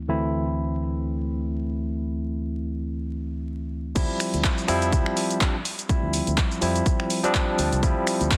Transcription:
0.08 tine electric piano D2 E3 A3 C4 E4
3.95 fingered electric bass D2, tine electric piano F3 G3 C4 E4, kick, closed hi-hat, crash, shaker
4.20 finger snap, open hi-hat, shaker
4.34 fingered electric bass D2, closed hi-hat, shaker
4.44 kick, clap, closed hi-hat, shaker
4.58 shaker
4.68 fingered electric bass F2, tine electric piano F3 G3 C4 E4, finger snap, open hi-hat, shaker
4.82 closed hi-hat, shaker
4.93 fingered electric bass D2, kick, closed hi-hat, shaker
5.06 finger snap
5.17 open hi-hat, shaker
5.30 closed hi-hat, shaker
5.41 tine electric piano F3 G3 C4 D4, kick, clap, closed hi-hat, shaker
5.65 open hi-hat, shaker
5.79 closed hi-hat, shaker
5.89 tine electric piano F3 G3 C4 E4, kick, closed hi-hat, shaker
6.03 fingered electric bass D2
6.14 open hi-hat, shaker
6.27 fingered electric bass D2, closed hi-hat, shaker
6.38 kick, clap, closed hi-hat, shaker
6.51 shaker
6.61 fingered electric bass F2, tine electric piano F3 G3 C4 E4, open hi-hat, shaker
6.76 closed hi-hat, shaker
6.86 kick, closed hi-hat, shaker
7.00 finger snap
7.10 open hi-hat, shaker
7.23 tine electric piano F3 G3 C4 D4, closed hi-hat, shaker
7.34 kick, clap, closed hi-hat, shaker
7.59 fingered electric bass D2, open hi-hat, shaker
7.72 fingered electric bass C2, closed hi-hat, shaker
7.82 tine electric piano F3 G3 C4 E4, kick, closed hi-hat, shaker
8.07 finger snap, open hi-hat, shaker
8.21 fingered electric bass D2, closed hi-hat, shaker
8.31 kick, clap, closed hi-hat, shaker

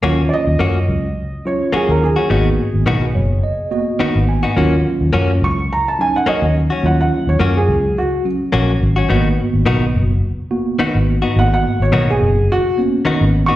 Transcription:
0.03 fingered electric bass D#2, tine electric piano F#3 C#4 F4, clean electric guitar A#3 C#4 F#4
0.29 upright piano D5
0.34 upright piano D#5
0.47 fingered electric bass D#2
0.59 fingered electric bass F#2, clean electric guitar A#3 C#4 F#4
0.88 fingered electric bass C#2
1.45 tine electric piano F#3 C#4 F4, upright piano C#5
1.72 clean electric guitar A#3 C#4 F#4, upright piano G#4, muted fingered electric bass stroke
1.89 fingered electric bass D#2, upright piano A#4
2.04 upright piano G#4
2.16 clean electric guitar C#4 F#4
2.29 fingered electric bass G#1, clean electric guitar D#3 B3 D#4 F#4, tine electric piano A#3 B3 F#4
2.74 fingered electric bass G#1
2.86 fingered electric bass B1, clean electric guitar D#3 B3 D#4 F#4
3.15 fingered electric bass F#1, tine electric piano C#5
3.44 tine electric piano D#5
3.71 tine electric piano A#3 B3 F#4 D#5
3.99 clean electric guitar D#3 B3 D#4 F#4, tine electric piano F#5, muted fingered electric bass stroke
4.15 fingered electric bass G#1
4.29 tine electric piano G#5
4.43 clean electric guitar B3 D#4 F#4
4.56 fingered electric bass D#2, tine electric piano F#3 C#4 F4, clean electric guitar A#3 C#4 F#4
5.01 fingered electric bass D#2
5.13 fingered electric bass F#2, clean electric guitar A#3 C#4 F#4
5.42 fingered electric bass C#2, upright piano C#6
5.73 upright piano A#5
5.88 upright piano A5
5.99 tine electric piano F#3 C#4 D#4, upright piano G#5
6.16 upright piano F#5
6.26 clean electric guitar A#3 C#4 F#4, upright piano D#5, muted fingered electric bass stroke
6.42 fingered electric bass D#2
6.70 clean electric guitar C#4 F#4
6.83 fingered electric bass D#2, tine electric piano F#3 C#4 F4, upright piano F#5
7.01 upright piano F#5
7.27 fingered electric bass D#2, upright piano C#5
7.40 fingered electric bass F#2, clean electric guitar A#3 C#4 F#4
7.57 upright piano G#4
7.68 fingered electric bass C#2
7.98 upright piano F#4
8.25 tine electric piano F#3 C#4 F#4
8.52 fingered electric bass A#1, clean electric guitar A#3 C#4 F#4
8.81 fingered electric bass G#1
8.96 clean electric guitar C#4 F#4
9.09 fingered electric bass G#1, clean electric guitar D#3 B3 D#4 F#4, tine electric piano A#3 B3 F#4
9.54 fingered electric bass G#1
9.66 fingered electric bass B1, clean electric guitar D#3 B3 D#4 F#4
9.95 fingered electric bass F#1
10.51 tine electric piano A#3 B3 F#4
10.79 clean electric guitar D#3 B3 D#4 F#4, muted fingered electric bass stroke
10.95 fingered electric bass G#1
11.22 clean electric guitar B3 D#4 F#4
11.36 fingered electric bass G#1, tine electric piano A#3 B3 F#4, upright piano F#5
11.54 upright piano F#5
11.80 fingered electric bass G#1, upright piano C#5
11.92 fingered electric bass B1, clean electric guitar D#3 B3 D#4 F#4
12.10 upright piano G#4
12.21 fingered electric bass F#1
12.52 upright piano F#4
12.78 tine electric piano A#3 B3 C#4
13.05 clean electric guitar D#3 B3 D#4 F#4, muted fingered electric bass stroke
13.21 fingered electric bass G#1
13.46 clean electric guitar D#4 F#4, upright piano C#6
13.50 clean electric guitar B3

